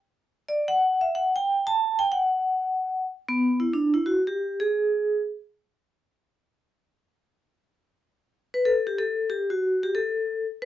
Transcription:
0.49 0.67 D5 medium
0.68 1.00 F#5 medium
1.01 1.13 E5 medium
1.15 1.32 F#5 medium
1.36 1.67 G5 medium
1.67 1.99 A5 medium
1.99 2.10 G5 loud
2.12 3.04 F#5 medium
3.29 3.58 B3 medium
3.60 3.73 E4 medium
3.73 3.92 D4 medium
3.94 4.06 E4 medium
4.06 4.15 F#4 medium
4.27 4.60 G4 medium
4.60 5.21 G#4 medium
8.54 8.59 B4 medium
8.65 8.86 A4 medium
8.87 8.99 G4 medium
8.99 9.32 A4 medium
9.30 9.51 G4 medium
9.50 9.84 F#4 medium
9.83 9.95 G4 medium
9.95 10.45 A4 medium
10.62 10.65 B4 medium

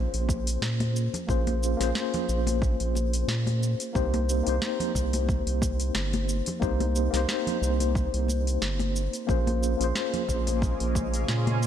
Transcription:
0.00 1.27 A#3 medium
0.00 1.28 C#4 medium
0.00 1.29 F4 medium
0.00 1.30 G#4 medium
0.00 1.30 C5 medium
0.14 0.58 A#1 medium
0.14 open hi-hat soft
0.29 kick loud
0.29 high conga medium
0.29 shaker medium
0.47 open hi-hat medium
0.47 shaker soft
0.62 1.09 A#2 medium
0.62 snare loud
0.62 shaker soft
0.80 open hi-hat soft
0.80 high conga medium
0.96 shaker medium
1.14 open hi-hat medium
1.14 low conga medium
1.14 shaker soft
1.27 1.75 A#1 loud
1.27 1.75 A#3 medium
1.27 1.76 C#4 medium
1.27 1.76 F4 medium
1.27 1.76 G#4 medium
1.27 1.77 C5 medium
1.27 kick loud
1.27 shaker soft
1.47 open hi-hat soft
1.47 high conga medium
1.63 shaker medium
1.77 1.93 A#1 medium
1.77 3.90 A#3 medium
1.77 3.91 C#4 medium
1.77 3.92 F4 medium
1.77 snare soft
1.77 open hi-hat medium
1.82 3.92 G#4 medium
1.82 3.93 C5 medium
1.82 shaker soft
1.95 snare medium
1.95 high conga medium
1.95 shaker soft
2.14 open hi-hat soft
2.14 low conga medium
2.29 2.76 A#1 loud
2.29 shaker medium
2.47 open hi-hat medium
2.47 high conga medium
2.47 shaker soft
2.62 kick loud
2.62 shaker soft
2.80 3.25 A#1 medium
2.80 open hi-hat soft
2.95 high conga medium
2.95 shaker medium
3.13 open hi-hat medium
3.13 shaker soft
3.28 3.75 A#2 medium
3.28 snare loud
3.28 shaker soft
3.47 open hi-hat soft
3.47 high conga medium
3.63 shaker medium
3.80 open hi-hat medium
3.80 shaker soft
3.93 4.42 C2 loud
3.93 4.42 A#3 medium
3.93 4.42 C4 medium
3.93 4.42 D#4 medium
3.93 4.43 G4 medium
3.93 4.43 C5 medium
3.93 kick loud
3.93 shaker soft
4.14 open hi-hat soft
4.14 high conga loud
4.29 shaker medium
4.43 6.56 A#3 medium
4.43 6.57 C4 medium
4.43 6.58 D#4 medium
4.43 open hi-hat medium
4.47 4.59 C2 medium
4.47 6.59 G4 medium
4.47 6.59 C5 medium
4.47 shaker soft
4.62 snare medium
4.62 high conga medium
4.62 shaker soft
4.80 open hi-hat soft
4.80 low conga medium
4.95 5.42 C2 loud
4.95 kick medium
4.95 shaker medium
5.13 open hi-hat soft
5.13 high conga medium
5.13 shaker soft
5.29 kick loud
5.29 shaker soft
5.47 5.91 C2 medium
5.47 open hi-hat soft
5.62 kick loud
5.62 high conga medium
5.62 shaker medium
5.80 open hi-hat medium
5.80 shaker soft
5.95 6.42 G1 medium
5.95 snare loud
5.95 shaker soft
6.13 open hi-hat soft
6.13 high conga medium
6.29 shaker medium
6.46 open hi-hat medium
6.46 low conga medium
6.46 shaker soft
6.60 7.09 C2 loud
6.60 7.08 A#3 medium
6.60 7.09 C4 medium
6.60 7.09 D#4 medium
6.60 7.10 G4 medium
6.60 7.10 C5 medium
6.60 kick loud
6.60 shaker soft
6.80 open hi-hat soft
6.80 high conga medium
6.96 shaker medium
7.11 7.26 C2 medium
7.11 9.23 A#3 medium
7.11 9.24 C4 medium
7.11 9.25 D#4 medium
7.11 snare soft
7.11 open hi-hat soft
7.15 9.26 G4 medium
7.15 9.27 C5 medium
7.15 shaker soft
7.28 snare medium
7.28 high conga medium
7.28 shaker soft
7.47 open hi-hat soft
7.47 low conga medium
7.62 8.09 C2 loud
7.62 shaker medium
7.80 open hi-hat soft
7.80 high conga medium
7.80 shaker soft
7.95 kick loud
7.95 shaker soft
8.14 8.58 C2 medium
8.14 open hi-hat soft
8.28 high conga medium
8.28 shaker medium
8.47 open hi-hat soft
8.47 shaker soft
8.62 9.09 G1 medium
8.62 snare loud
8.62 shaker soft
8.79 open hi-hat soft
8.79 high conga medium
8.96 shaker medium
9.13 open hi-hat soft
9.13 shaker soft
9.27 9.76 A#1 loud
9.27 11.67 C#3 medium
9.27 11.67 G#3 medium
9.27 9.75 A#3 medium
9.27 11.67 A#3 medium
9.27 9.76 C#4 medium
9.27 9.76 F4 medium
9.27 9.76 G#4 medium
9.27 9.77 C5 medium
9.27 kick loud
9.27 shaker soft
9.47 open hi-hat soft
9.47 high conga medium
9.63 shaker medium
9.77 9.93 A#1 medium
9.77 11.67 A#3 medium
9.77 11.67 C#4 medium
9.77 11.67 F4 medium
9.77 open hi-hat medium
9.82 11.67 G#4 medium
9.82 11.67 C5 medium
9.82 shaker soft
9.95 snare medium
9.95 high conga medium
9.95 shaker soft
10.14 open hi-hat soft
10.14 low conga medium
10.29 10.75 A#1 loud
10.29 kick medium
10.29 shaker medium
10.47 open hi-hat soft
10.47 high conga medium
10.47 shaker soft
10.62 kick loud
10.62 shaker soft
10.80 11.25 A#1 medium
10.80 open hi-hat soft
10.95 kick loud
10.95 high conga medium
10.95 shaker medium
11.14 open hi-hat soft
11.14 shaker soft
11.28 11.67 A#2 medium
11.28 snare medium
11.28 shaker soft
11.47 open hi-hat soft
11.47 high conga medium
11.63 shaker medium

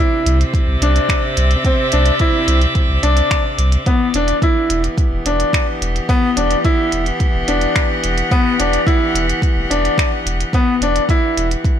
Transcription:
0.00 3.87 C3 loud
0.00 3.88 C4 medium
0.00 0.36 E4 medium
0.00 1.03 C5 medium
0.00 5.58 D5 medium
0.00 0.68 G5 medium
0.26 0.44 C2 loud
0.26 closed hi-hat medium
0.34 4.55 E5 medium
0.41 closed hi-hat soft
0.54 kick medium
0.54 closed hi-hat soft
0.68 0.77 C2 medium
0.81 0.99 C2 medium
0.81 1.20 D4 medium
0.81 closed hi-hat medium
0.96 closed hi-hat soft
1.09 finger snap medium
1.09 kick loud
1.09 closed hi-hat soft
1.37 1.55 C2 loud
1.37 closed hi-hat medium
1.51 closed hi-hat soft
1.65 1.84 C4 medium
1.65 kick loud
1.65 closed hi-hat soft
1.92 2.11 C2 medium
1.92 2.12 D4 medium
1.92 closed hi-hat medium
2.06 closed hi-hat soft
2.19 2.58 E4 medium
2.19 kick loud
2.19 closed hi-hat soft
2.48 2.66 C2 loud
2.48 closed hi-hat medium
2.62 closed hi-hat soft
2.75 kick loud
2.75 closed hi-hat soft
2.89 2.99 C2 loud
3.03 3.21 C2 medium
3.03 3.41 D4 medium
3.03 closed hi-hat medium
3.17 closed hi-hat soft
3.31 finger snap medium
3.31 kick loud
3.31 closed hi-hat soft
3.58 3.77 C2 medium
3.58 closed hi-hat medium
3.72 closed hi-hat soft
3.86 11.79 E3 medium
3.86 4.06 B3 medium
3.86 kick loud
3.86 closed hi-hat soft
3.97 11.79 B3 medium
4.01 11.79 G4 medium
4.14 4.33 E1 medium
4.14 4.34 D4 medium
4.14 closed hi-hat medium
4.28 closed hi-hat soft
4.42 4.80 E4 medium
4.42 kick loud
4.42 closed hi-hat soft
4.70 4.88 E1 loud
4.70 closed hi-hat medium
4.84 closed hi-hat soft
4.98 kick loud
4.98 closed hi-hat soft
5.11 5.20 E1 loud
5.25 5.44 E1 medium
5.25 5.64 D4 medium
5.25 closed hi-hat medium
5.40 closed hi-hat soft
5.53 finger snap medium
5.53 kick loud
5.53 closed hi-hat soft
5.80 5.99 E1 loud
5.80 11.79 F#5 medium
5.80 closed hi-hat medium
5.96 closed hi-hat soft
6.09 6.28 B3 loud
6.09 kick loud
6.09 closed hi-hat soft
6.37 6.55 E1 loud
6.37 6.56 D4 medium
6.37 closed hi-hat medium
6.51 closed hi-hat soft
6.65 7.02 E4 medium
6.65 kick loud
6.65 closed hi-hat soft
6.92 7.11 E1 loud
6.92 closed hi-hat medium
7.06 closed hi-hat soft
7.20 kick loud
7.20 closed hi-hat soft
7.34 7.43 E1 loud
7.48 7.66 E1 medium
7.48 7.86 D4 medium
7.48 closed hi-hat medium
7.61 closed hi-hat soft
7.76 finger snap medium
7.76 kick loud
7.76 closed hi-hat soft
8.04 8.22 E1 loud
8.04 closed hi-hat medium
8.18 closed hi-hat soft
8.31 8.50 B3 loud
8.31 kick loud
8.31 closed hi-hat soft
8.59 8.77 E1 loud
8.59 8.78 D4 medium
8.59 closed hi-hat medium
8.73 closed hi-hat soft
8.86 9.24 E4 medium
8.86 kick loud
8.86 closed hi-hat soft
9.14 9.33 E1 loud
9.14 closed hi-hat medium
9.30 closed hi-hat soft
9.42 kick loud
9.42 closed hi-hat soft
9.56 9.65 E1 loud
9.70 9.88 E1 medium
9.70 10.08 D4 medium
9.70 closed hi-hat medium
9.85 closed hi-hat soft
9.98 finger snap medium
9.98 kick loud
9.98 closed hi-hat soft
10.26 10.44 E1 loud
10.26 closed hi-hat medium
10.41 closed hi-hat soft
10.53 10.73 B3 medium
10.53 kick loud
10.53 closed hi-hat soft
10.81 10.99 E1 loud
10.81 11.01 D4 medium
10.81 closed hi-hat medium
10.96 closed hi-hat soft
11.09 11.47 E4 medium
11.09 kick loud
11.09 closed hi-hat soft
11.37 11.55 E1 loud
11.37 closed hi-hat medium
11.51 closed hi-hat soft
11.64 kick loud
11.64 closed hi-hat soft

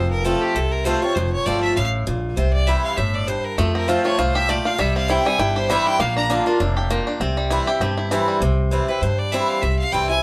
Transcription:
0.00 0.32 F1 loud
0.00 0.53 F2 medium
0.00 0.10 C5 medium
0.11 0.27 A#4 medium
0.25 0.54 F3 medium
0.25 0.54 A3 medium
0.25 0.54 C4 medium
0.25 0.55 F4 medium
0.25 0.43 A4 medium
0.41 0.56 G4 medium
0.55 0.93 C2 medium
0.55 1.14 C3 medium
0.55 0.73 A4 medium
0.72 0.86 A#4 medium
0.85 1.02 F3 medium
0.85 1.02 A3 loud
0.85 1.02 C4 loud
0.85 1.01 F4 loud
0.85 1.03 C5 medium
1.02 1.16 C4 medium
1.02 1.15 F4 medium
1.02 1.16 C#5 loud
1.15 1.35 F1 loud
1.15 1.74 F2 medium
1.15 1.32 C5 medium
1.32 1.47 C#5 loud
1.46 1.72 G1 medium
1.46 1.75 F3 medium
1.46 1.75 A3 medium
1.46 1.76 C4 medium
1.46 1.76 F4 medium
1.46 1.62 D5 loud
1.63 1.76 E5 medium
1.76 2.02 A1 medium
1.76 2.06 A2 medium
1.76 1.86 F5 loud
2.07 2.33 A#1 loud
2.07 2.36 A#2 medium
2.37 2.75 C2 medium
2.37 2.95 C3 medium
2.37 2.53 C5 medium
2.53 2.69 D5 medium
2.67 2.96 E3 medium
2.67 2.96 G3 medium
2.67 2.97 C4 medium
2.67 2.97 E4 medium
2.67 2.84 E5 loud
2.84 2.99 F5 loud
2.97 3.35 G1 medium
2.97 3.27 A2 medium
2.97 3.16 E5 medium
3.14 3.29 D5 medium
3.27 3.57 G2 medium
3.27 3.46 C5 medium
3.44 3.59 A#4 medium
3.58 3.96 F2 medium
3.58 4.16 F2 medium
3.58 4.02 A3 medium
3.58 3.74 A4 medium
3.75 4.16 C4 medium
3.75 3.90 A#4 medium
3.88 4.04 F3 medium
3.88 4.05 A3 medium
3.88 4.05 C4 medium
3.88 4.17 F4 medium
3.88 4.03 F4 medium
3.88 4.04 C5 medium
4.04 4.46 A3 medium
4.04 4.19 C4 soft
4.04 4.18 F4 medium
4.04 4.20 C#5 loud
4.18 4.56 C2 medium
4.18 4.47 A2 medium
4.18 4.62 F4 medium
4.18 4.37 C5 medium
4.35 4.76 G4 medium
4.35 4.51 E5 loud
4.49 4.78 A#2 medium
4.49 4.79 A3 medium
4.49 4.68 D5 loud
4.65 4.79 F4 medium
4.65 4.81 F5 loud
4.78 5.16 C2 loud
4.78 5.36 C3 medium
4.78 5.23 G3 medium
4.78 4.96 E5 medium
4.96 5.37 C4 medium
4.96 5.12 F5 medium
5.08 5.25 E3 medium
5.08 5.25 G3 medium
5.08 5.26 C4 medium
5.08 5.38 E4 medium
5.08 5.24 E4 medium
5.08 5.28 G5 medium
5.25 5.67 G3 medium
5.25 5.39 C4 medium
5.25 5.38 E4 medium
5.25 5.41 G#5 loud
5.39 5.76 G1 medium
5.39 5.97 G2 medium
5.39 5.83 E4 medium
5.39 5.56 G5 medium
5.56 5.97 G4 medium
5.56 5.72 C5 medium
5.70 5.98 E3 medium
5.70 5.99 G3 medium
5.70 5.99 C4 loud
5.70 5.99 E4 loud
5.70 5.88 E5 loud
5.87 6.00 E4 medium
5.87 6.02 G5 loud
5.99 6.37 A#1 loud
5.99 6.58 A#2 medium
5.99 6.43 A#3 medium
5.99 6.17 F5 medium
6.16 6.29 D4 medium
6.16 6.25 A#5 loud
6.30 6.46 D3 medium
6.30 6.46 A#3 medium
6.30 6.59 D4 medium
6.30 6.46 D4 medium
6.30 6.45 F4 medium
6.46 6.88 A#3 medium
6.46 6.60 D4 medium
6.46 6.59 F4 medium
6.60 6.98 F1 medium
6.60 6.89 A2 medium
6.60 7.04 D4 medium
6.77 7.18 G4 medium
6.90 7.19 A#2 medium
6.90 7.21 A#3 medium
7.07 7.21 D4 medium
7.20 7.58 C2 loud
7.20 7.78 C3 medium
7.20 7.64 C4 medium
7.37 7.78 G3 medium
7.50 7.67 E3 medium
7.50 7.67 G3 medium
7.50 7.67 C4 medium
7.50 7.94 E4 medium
7.50 7.66 E4 medium
7.67 7.81 C4 soft
7.67 7.80 E4 medium
7.67 8.08 G4 medium
7.80 8.18 G1 medium
7.80 8.39 G2 medium
7.80 8.25 C4 medium
7.98 8.39 E4 medium
8.11 8.41 E3 medium
8.11 8.40 E3 medium
8.11 8.40 G3 loud
8.11 8.41 C4 medium
8.11 8.41 E4 loud
8.28 8.41 G3 medium
8.40 8.78 C2 medium
8.40 8.99 C3 medium
8.71 8.88 E3 medium
8.71 8.88 G3 medium
8.71 8.88 C4 medium
8.71 8.87 E4 medium
8.88 9.02 C4 soft
8.88 9.01 E4 medium
8.88 9.03 B4 medium
9.02 9.39 G2 medium
9.02 9.60 G2 medium
9.02 9.20 C5 medium
9.19 9.34 D5 medium
9.32 9.61 E3 medium
9.32 9.62 G3 medium
9.32 9.62 C4 medium
9.32 9.62 E4 loud
9.32 9.50 E5 medium
9.48 9.64 F5 loud
9.62 9.81 C2 loud
9.62 10.20 C3 medium
9.62 9.78 E5 medium
9.79 9.94 F5 medium
9.92 10.19 C2 medium
9.92 10.09 E3 medium
9.92 10.09 G3 medium
9.92 10.09 C4 medium
9.92 10.08 E4 medium
9.92 10.09 G5 medium
10.09 10.23 C4 soft
10.09 10.22 E4 medium
10.09 10.23 G#5 loud

